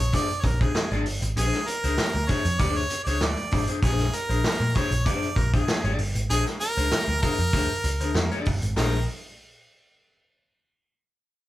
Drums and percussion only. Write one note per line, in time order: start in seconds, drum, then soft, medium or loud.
0.13 kick loud
0.13 closed hi-hat medium
0.30 closed hi-hat soft
0.44 kick medium
0.44 closed hi-hat medium
0.61 kick medium
0.61 closed hi-hat soft
0.75 snare loud
0.75 clap medium
0.91 closed hi-hat soft
1.06 open hi-hat medium
1.22 closed hi-hat medium
1.37 closed hi-hat medium
1.53 snare soft
1.53 closed hi-hat soft
1.67 closed hi-hat medium
1.84 closed hi-hat medium
1.98 snare loud
1.98 clap loud
2.15 closed hi-hat soft
2.29 kick loud
2.29 closed hi-hat medium
2.45 closed hi-hat medium
2.59 kick loud
2.59 closed hi-hat medium
2.76 closed hi-hat soft
2.90 closed hi-hat medium
3.06 closed hi-hat soft
3.21 snare loud
3.21 clap medium
3.37 closed hi-hat soft
3.51 kick medium
3.51 open hi-hat medium
3.67 closed hi-hat medium
3.82 kick loud
3.82 closed hi-hat medium
3.98 snare soft
3.98 closed hi-hat soft
4.13 closed hi-hat medium
4.30 closed hi-hat soft
4.44 snare loud
4.44 clap loud
4.61 closed hi-hat soft
4.75 kick loud
4.75 closed hi-hat medium
4.91 closed hi-hat medium
5.06 kick loud
5.06 closed hi-hat loud
5.23 closed hi-hat soft
5.36 kick loud
5.36 closed hi-hat medium
5.53 kick loud
5.53 closed hi-hat soft
5.68 snare loud
5.68 clap medium
5.84 closed hi-hat soft
5.99 open hi-hat medium
6.15 closed hi-hat medium
6.30 closed hi-hat medium
6.46 snare soft
6.46 closed hi-hat soft
6.61 closed hi-hat medium
6.77 closed hi-hat soft
6.92 snare loud
6.92 clap loud
7.08 closed hi-hat soft
7.22 kick loud
7.22 closed hi-hat medium
7.38 closed hi-hat medium
7.53 kick loud
7.53 closed hi-hat medium
7.70 closed hi-hat soft
7.84 closed hi-hat medium
8.00 closed hi-hat soft
8.15 snare loud
8.15 clap medium
8.31 closed hi-hat soft
8.45 kick medium
8.45 open hi-hat medium
8.62 closed hi-hat medium
8.77 snare medium
8.77 clap medium
8.77 open hi-hat medium